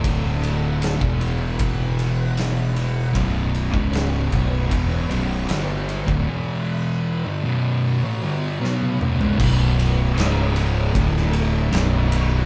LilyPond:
<<
  \new Staff \with { instrumentName = "String machine" } { \time 4/4 \key b \minor \tempo 4 = 77 << { e''4~ e''16 fis''2~ fis''8. | cis''1 | fis''4~ fis''16 cis''2~ cis''8. | cis''2 e''4 cis''4 | } \\ { <d' a'>4~ <d' a'>16 <e' b'>2~ <e' b'>8. | <b fis'>1 | <e' b'>4~ <e' b'>16 <b fis'>2~ <b fis'>8. | <b fis'>4 <cis' gis'>4 <d' a'>4 <b fis'>4 | } >> }
  \new Staff \with { instrumentName = "Distorted electric guitar" } { \clef bass \time 4/4 \key b \minor <d, a, d>4~ <d, a, d>16 <e, b, e>2~ <e, b, e>8. | <b,, fis, b,>8. <cis, gis, cis>8. <b,, fis, b,>8 <e, b, e>8 <b,, fis, b,>8 <g, d g>8. <d, a,>16 | <e, b, e>4~ <e, b, e>16 <g, d>16 <b,, fis, b,>8. <a, e>16 <g, d g>8 <b, fis b>8 <b,, fis,>16 <cis, gis,>16 | <b,, fis, b,>4 <cis, gis, cis>4 <d, a, d>4 <b,, fis, b,>4 | }
  \new Staff \with { instrumentName = "Distorted electric guitar" } { \clef bass \time 4/4 \key b \minor <d, a, d>4~ <d, a, d>16 <e, b, e>2~ <e, b, e>8. | <b,, fis, b,>8. <cis, gis, cis>8. <b,, fis, b,>8 <e, b, e>8 <b,, fis, b,>8 <g, d g>8. <d, a,>16 | <e, b, e>4~ <e, b, e>16 <g, d>16 <b,, fis, b,>8. <a, e>16 <g, d g>8 <b, fis b>8 <b,, fis,>16 <cis, gis,>16 | <b,, fis, b,>4 <cis, gis, cis>4 <d, a, d>4 <b,, fis, b,>4 | }
  \new Staff \with { instrumentName = "Fingered electric bass" } { \clef bass \time 4/4 \key b \minor d,,4~ d,,16 e,,2~ e,,8. | b,,,8. cis,,8. b,,,8 e,,8 b,,,8 g,,8. d,,16 | r1 | b,,,4 cis,,4 d,,4 b,,,4 | }
  \new DrumStaff \with { instrumentName = "Drums" } \drummode { \time 4/4 <bd cymr>8 cymr8 <cymr sn>16 bd16 cymr8 <bd cymr>8 cymr8 <cymr sn>8 cymr8 | <bd cymr>8 cymr16 bd16 <cymr sn>8 <bd cymr>8 <bd cymr>8 cymr8 <cymr sn>8 cymr16 bd16 | r4 r4 r4 sn16 tommh16 toml16 tomfh16 | <cymc bd>8 cymr8 <cymr sn>8 cymr8 <bd cymr>16 sn16 cymr8 <cymr sn>8 cymr8 | }
>>